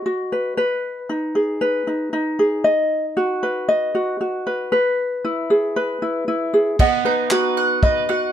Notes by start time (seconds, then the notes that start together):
Already playing: B4 D#5
0.06 F#4
0.32 B4
0.57 B4
1.09 D#4
1.35 G#4
1.61 B4
1.87 D#4
2.13 D#4
2.39 G#4
2.64 D#5
3.17 F#4
3.43 B4
3.69 D#5
3.95 F#4
4.21 F#4
4.47 B4
4.72 B4
5.25 E4
5.50 G#4
5.76 B4
6.02 E4
6.28 E4
6.54 G#4
6.79 B3 D#5 F#5, kick, crash
7.05 D#4 B4
7.31 F#4 B4, clap
7.57 F#5
7.83 B4 D#5, kick
8.09 F#4 F#5